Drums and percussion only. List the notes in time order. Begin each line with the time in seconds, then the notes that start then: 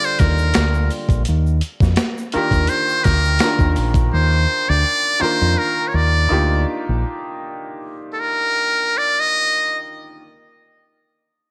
0.03 shaker
0.19 kick, snare, closed hi-hat, shaker
0.38 shaker
0.54 finger snap, snare, closed hi-hat, shaker
0.74 shaker
0.90 open hi-hat, shaker
1.09 kick, closed hi-hat, shaker
1.25 closed hi-hat, shaker
1.47 shaker
1.61 closed hi-hat, shaker
1.80 kick, snare, shaker
1.96 finger snap, snare, closed hi-hat, shaker
2.18 shaker
2.32 closed hi-hat
2.51 kick, closed hi-hat, shaker
2.67 closed hi-hat, shaker
2.89 shaker
3.04 kick, snare, closed hi-hat, shaker
3.25 shaker
3.39 finger snap, snare, closed hi-hat, shaker
3.59 kick, shaker
3.76 open hi-hat, shaker
3.94 kick, closed hi-hat, shaker